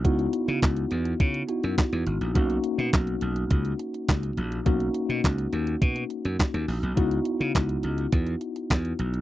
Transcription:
<<
  \new Staff \with { instrumentName = "Tine electric piano" } { \time 4/4 \key cis \dorian \tempo 4 = 104 <b dis' e' fis'>2~ <b dis' e' fis'>8 <b dis' e' fis'>4. | <ais cis' dis' fis'>1 | <ais cis' dis' fis'>1 | <b dis' e' fis'>1 | }
  \new Staff \with { instrumentName = "Slap bass" } { \clef bass \time 4/4 \key cis \dorian cis,8 r16 cis16 cis,8 e,8 cis8 r16 fis,16 r16 e,16 gis,,16 ais,,16 | b,,8 r16 b,16 b,,8 b,,8 cis,8 r8 cis,8 ais,,8 | b,,8 r16 b,16 cis,8 dis,8 b,8 r16 fis,16 r16 dis,16 ais,,16 b,,16 | cis,8 r16 cis16 cis,8 cis,8 e,8 r8 e,8 b,,8 | }
  \new DrumStaff \with { instrumentName = "Drums" } \drummode { \time 4/4 <hh bd>16 hh16 hh16 hh16 <hc hh bd sn>16 hh16 hh16 hh16 <hh bd>16 hh16 hh16 hh16 <hc hh bd sn>16 hh16 hh16 hh16 | <hh bd>16 hh16 hh16 hh16 <hc hh bd sn>16 hh16 hh16 hh16 <hh bd>16 hh16 hh16 hh16 <hc hh bd sn>16 hh16 hh16 hh16 | <hh bd>16 hh16 hh16 hh16 <hc hh bd sn>16 hh16 hh16 hh16 <hh bd>16 hh16 hh16 hh16 <hc hh bd sn>16 hh16 hho16 hh16 | <hh bd>16 hh16 hh16 hh16 <hc hh bd sn>16 hh16 hh16 hh16 <hh bd>16 hh16 hh16 hh16 <hc hh bd sn>16 hh16 hh16 hh16 | }
>>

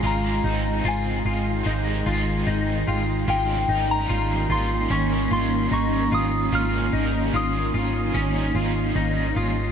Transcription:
<<
  \new Staff \with { instrumentName = "Synth bell" } { \time 4/4 \key ees \mixolydian \tempo 4 = 74 bes''4 aes''4 r2 | g''8. bes''8. c'''8 des'''8 c'''8 des'''8 ees'''8 | f'''4 ees'''4 r2 | }
  \new Staff \with { instrumentName = "Celesta" } { \time 4/4 \key ees \mixolydian f''8 r4 c'''2 g''8~ | g''8 r2 r8 bes''4~ | bes''4 r2 r8 ees'''8 | }
  \new Staff \with { instrumentName = "Clean electric guitar" } { \time 4/4 \key ees \mixolydian f'8 ees'8 f'8 f'8 ees'8 f'8 ees'8 f'8 | f'8 ees'8 f'8 f'8 des'8 f'8 ees'8 f'8 | f'8 ees'8 f'8 f'8 des'8 f'8 ees'8 f'8 | }
  \new Staff \with { instrumentName = "Overdriven electric guitar" } { \time 4/4 \key ees \mixolydian <aes c' ees' g'>8 <c' ees'>4. <aes c' ees' g'>2 | <aes, des g des' ees' bes'>8 <g des' ees' bes'>4. <g des' ees' bes'>2 | <aes, des g des' ees' bes'>8 <g des' ees' bes'>4. <g des' ees' bes'>2 | }
  \new Staff \with { instrumentName = "Ambient pad" } { \time 4/4 \key ees \mixolydian << { ees'1~ | ees'1~ | ees'1 | } \\ { <ees aes>1 | <ees bes des'>1~ | <ees bes des'>1 | } >> }
  \new Staff \with { instrumentName = "Picked electric bass" } { \clef bass \time 4/4 \key ees \mixolydian aes,,8 aes,,8 aes,,8 aes,,8 aes,,8 aes,,8 aes,,8 aes,,8 | aes,,8 aes,,8 aes,,8 aes,,8 aes,,8 aes,,8 aes,,8 aes,,8 | aes,,8 aes,,8 aes,,8 aes,,8 aes,,8 aes,,8 aes,,8 aes,,8 | }
>>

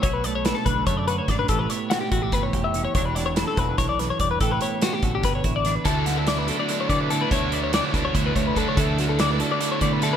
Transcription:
<<
  \new Staff \with { instrumentName = "Clean electric guitar" } { \time 7/8 \key d \major \tempo 4 = 144 cis''16 b'16 d''16 cis''16 b'16 a'16 b'8 cis''16 d''16 b'16 cis''16 d''16 b'16 | a'16 b'16 cis''8 fis'16 g'16 fis'16 g'16 b'16 cis''8 e''8 cis''16 | cis''16 b'16 d''16 cis''16 b'16 a'16 b'8 cis''16 d''16 b'16 cis''16 d''16 b'16 | a'16 b'16 cis''8 fis'16 g'16 fis'16 g'16 b'16 cis''8 d''8 b'16 |
a'8 fis'16 a'16 d''16 b'16 a'16 d''8 cis''16 d''16 b'16 a'16 b'16 | cis''8 d''16 cis''16 d''16 cis''16 b'16 cis''8 b'16 cis''16 b'16 a'16 cis''16 | a'8 fis'16 a'16 d''16 b'16 a'16 d''8 cis''16 d''16 b'16 a'16 b'16 | }
  \new Staff \with { instrumentName = "Clean electric guitar" } { \time 7/8 \key d \major << { fis'8 a8 a'4 a8 fis'8 d'8 | g'8 b8 g'4 b8 g'8 cis'8 | <e fis d' g'>8 fis8 a'2~ a'8 | g'8 b8 g'4 b8 e'8 d'8 |
e'8 b8 e'8 fis8 e'8 b8 e'8 | e'8 b8 d'16 e'16 fis8 e'8 b8 e'8 | e'8 b8 e'8 fis8 e'8 b8 e'8 | } \\ { b,4. d4. fis,8 | a,4. e4. e,8 | e,4. e8 e,8 fis,8 g,8 | a,4. d4. e,8 |
d,4. d4 a,4 | d,4. d4 a,4 | d,4. d4 a,4 | } >> }
  \new Staff \with { instrumentName = "Overdriven electric guitar" } { \time 7/8 \key d \major r2. r8 | r2. r8 | r2. r8 | r2. r8 |
<d fis a d'>4 <d fis a d'>8 <fis a d'>8 <d fis a d'>4 <d fis a d'>8 | <d fis a d'>4 <d fis a d'>8 <fis a d'>8 <d fis a d'>4 <d fis a d'>8 | <d fis a d'>4 <d fis a d'>8 <fis a d'>8 <d fis a d'>4 <d fis a d'>8 | }
  \new Staff \with { instrumentName = "Fingered electric bass" } { \clef bass \time 7/8 \key d \major b,,4. b,,8 fis,4 gis,,8 | a,,8 r4 a,,8 g,,8 f,,4 | e,,4. e,,8 b,,4 e,,8 | a,,8 r4 a,,8 g,,8 a,,4 |
d,2 r8 d4 | d,4. d,8 d,8 d,8 d,16 r16 | d,2 r8 d4 | }
  \new DrumStaff \with { instrumentName = "Drums" } \drummode { \time 7/8 <hh bd>8 hh8 <hh sn>8 <hh bd>8 <hh bd>8 hh8 <hh bd sn>8 | <hh bd>8 hh8 <hh sn>8 <hh bd>8 <hh bd sn>8 <hh bd>8 hh8 | <hh bd>8 <hh sn>8 <hh sn>8 <hh bd>8 <hh bd sn>8 <hh sn>8 <hh bd>8 | <hh bd>8 hh8 <hh sn>8 <hh bd>8 <hh bd sn>8 <hh bd>8 <hh sn>8 |
<hh bd>8 <hh sn>8 <hh sn>8 hh8 hh8 <hh bd>8 hh8 | <hh bd>8 hh8 <hh sn>8 <hh bd>8 <hh bd>8 <hh bd>8 <hh bd>8 | <hh bd>8 <hh sn>8 <hh sn>8 hh8 hh8 <hh bd>8 <hh sn>8 | }
>>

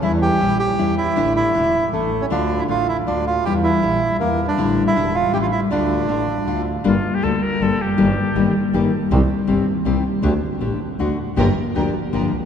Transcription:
<<
  \new Staff \with { instrumentName = "Flute" } { \time 3/4 \key d \minor \tempo 4 = 158 r2. | r2. | r2. | r2. |
r2. | r2. | \key g \minor f'8. g'16 a'8 bes'8 a'8 g'8~ | g'4. r4. |
r2. | r2. | r2. | }
  \new Staff \with { instrumentName = "String section" } { \time 3/4 \key d \minor r2. | r2. | r2. | r2. |
r2. | r2. | \key g \minor r2. | r2. |
r2. | r2. | <f' g' bes'>8 r8 <f' g' bes'>8 r8 <f' g' bes'>8 r8 | }
  \new Staff \with { instrumentName = "Bandoneon" } { \time 3/4 \key d \minor e'8 g'4 g'4 e'8~ | e'8 e'4. a8. cis'16 | d'8. e'16 f'8 e'8 d'8 f'8 | g'8 e'4. bes8. d'16~ |
d'8. e'8. f'8 g'16 f'16 e'8 | d'2~ d'8 r8 | \key g \minor r2. | r2. |
r2. | r2. | r2. | }
  \new Staff \with { instrumentName = "Nylon-string guitar" } { \time 3/4 \key d \minor <e g e'>4 <e g e'>8 r8 <e g e'>8 r8 | <d a d' e'>4 <d a d' e'>8 r8 <e a cis' e'>8 r8 | <d a d' f'>4 <d a d' f'>8 r8 <d a d' f'>8 r8 | <e g e'>4 <e g e'>8 r8 <e g e'>8 r8 |
<d g d' e'>4 <d g d' e'>8 r8 <e g cis' e'>8 r8 | <d a d' f'>4 <d a d' f'>8 r8 <d a d' f'>8 r8 | \key g \minor <d g bes d' a'>16 r8. <d g bes d' a'>8 r8 <d g bes d' a'>8 r8 | <ees g bes ees' g'>16 r8. <ees g bes ees' g'>8 r8 <ees g bes ees' g'>8 r8 |
<c ees g c' g'>16 r8. <c ees g c' g'>8 r8 <c ees g c' g'>8 r8 | <d a d' g'>16 r8. <d a d' g'>8 r8 <d a d' fis'>8 r8 | <d f bes d' g'>16 r8. <d f bes d' g'>8 r8 <d f bes d' g'>8 r8 | }
  \new Staff \with { instrumentName = "Double bass" } { \clef bass \time 3/4 \key d \minor e,4 bes,,4 e,4 | a,,4 e,,4 a,,4 | d,4 a,,4 d,4 | e,4 bes,,4 e,4 |
a,,4 e,,4 a,,4 | d,4 a,,4 d,4 | \key g \minor g,,8 r8 d,8 r8 g,,8 f,,8 | g,,8 r8 g,,8 r8 g,,8 r8 |
c,8 r8 g,,8 r8 c,8 r8 | d,8 r8 a,,8 r8 d,8 r8 | g,,8 r8 d,8 r8 g,,8 cis,8 | }
>>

